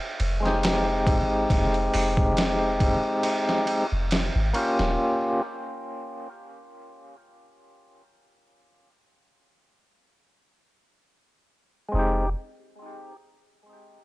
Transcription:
0.20 808-style bass F1, ride
0.40 tonewheel organ G#3 C4
0.45 tonewheel organ D#4 G4, snare
0.63 snare, ride
1.07 808-style bass G#1, kick, ride
1.50 808-style bass F1, kick, ride
1.74 ride
1.94 808-style bass F1, open hi-hat
2.17 kick
2.37 snare, ride
2.80 kick, ride
3.23 ride
3.49 snare
3.67 ride
3.92 808-style bass F1
4.11 snare, ride
4.35 808-style bass G#1
4.53 tonewheel organ A#3 C#4 F4 G4, ride
4.79 808-style bass D#1, snare
11.89 tonewheel organ G#3 C4
11.94 808-style bass F1, tonewheel organ D#4
11.99 tonewheel organ G4

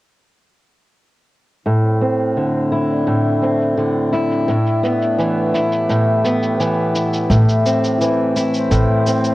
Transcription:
1.66 steel-string acoustic guitar A2, harmonium A2, cabasa
1.80 harmonium C4
1.84 cabasa
2.01 steel-string acoustic guitar C4, cabasa
2.19 cabasa
2.37 steel-string acoustic guitar D3, cabasa
2.72 steel-string acoustic guitar E4, cabasa
2.89 harmonium D4, cabasa
2.94 harmonium E4
3.07 steel-string acoustic guitar A2, cabasa
3.42 steel-string acoustic guitar C4, cabasa
3.61 cabasa
3.77 steel-string acoustic guitar D3, cabasa
4.12 steel-string acoustic guitar E4, cabasa
4.31 cabasa
4.48 steel-string acoustic guitar A2, cabasa
4.66 cabasa
4.83 steel-string acoustic guitar B3, cabasa
5.02 cabasa
5.15 steel-string acoustic guitar E3, harmonium A3
5.19 cabasa
5.54 steel-string acoustic guitar E4, cabasa
5.72 cabasa
5.77 harmonium G4
5.89 steel-string acoustic guitar A2, cabasa
6.25 steel-string acoustic guitar B3, cabasa
6.43 cabasa
6.60 steel-string acoustic guitar E3, cabasa
6.95 steel-string acoustic guitar E4, cabasa
7.13 cabasa
7.30 upright bass A1, steel-string acoustic guitar A2, cabasa
7.49 cabasa
7.66 steel-string acoustic guitar C4, cabasa
7.84 cabasa
8.01 steel-string acoustic guitar E3, cabasa
8.36 steel-string acoustic guitar E4, cabasa
8.54 harmonium C5, cabasa
8.71 upright bass A1, steel-string acoustic guitar A2, cabasa
9.07 steel-string acoustic guitar C4, cabasa
9.24 cabasa

